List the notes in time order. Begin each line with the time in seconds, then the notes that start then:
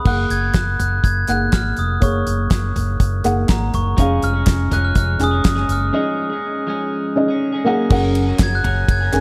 0.05 F#1 A#3 G#4 F#5 F#6, kick, crash
0.30 F#1 G#6, closed hi-hat
0.54 F#1 F#6, kick, snare, clap, closed hi-hat
0.79 F#1 F#6, closed hi-hat, floor tom
1.04 F#1 G#6, kick, closed hi-hat
1.27 F#1 A#3 G#4 F#5 F#6, clap, closed hi-hat
1.52 G#1 F6, kick, snare, clap, closed hi-hat
1.77 F1 D#6, closed hi-hat
2.00 F#1 A#3 G#4 C#5 C#6, kick, closed hi-hat
2.27 F#1, closed hi-hat
2.51 kick, snare, clap, closed hi-hat
2.76 F#1, closed hi-hat, floor tom
3.00 F#1, kick, closed hi-hat
3.24 F#1 A#3 G#4 F#5, clap, closed hi-hat
3.48 G#1 A#5, kick, snare, clap, closed hi-hat
3.74 F#1 C#6, closed hi-hat, floor tom
3.97 F1 F3 G#3 C#4 G#4 F5, kick, closed hi-hat
4.22 F1 F6, closed hi-hat
4.34 G#3 C#4 G#4
4.47 F1, kick, snare, clap, closed hi-hat
4.71 F1 F3 G#3 C#4 G#4 F#6, closed hi-hat, floor tom
4.85 F6
4.95 F1 F6, kick, closed hi-hat
5.19 F1 C#4 G#4 G#5, clap, closed hi-hat
5.24 D#6
5.31 G#3 C#4 G#4
5.44 F#1, kick, snare, clap, closed hi-hat
5.48 D#6
5.55 G#3 C#4 G#4, snare
5.69 F#1 F6, closed hi-hat
5.93 F3 G#3 C#4 G#4 D#5
6.30 G#3 C#4 G#4
6.67 F3 G#3 C#4 G#4
7.16 C#4 G#4 D#5
7.28 G#3 C#4 G#4
7.52 G#3 C#4 G#4
7.65 F#3 A#3 C#4 G#4 F#5
7.90 F#1 F#3 A#3 C#4 G#4 A#4 F#5, kick, crash
8.15 ride
8.27 F#3 A#3 C#4 G#4
8.39 F#1 G#6, kick, snare, clap, ride
8.55 F#6
8.63 F#1 F#3 A#3 C#4 G#4, floor tom, ride
8.88 F#1 G#6, kick, ride
9.00 A#3 C#4 G#4
9.12 F#1 C#4 G#4 A#4 G#5, clap, ride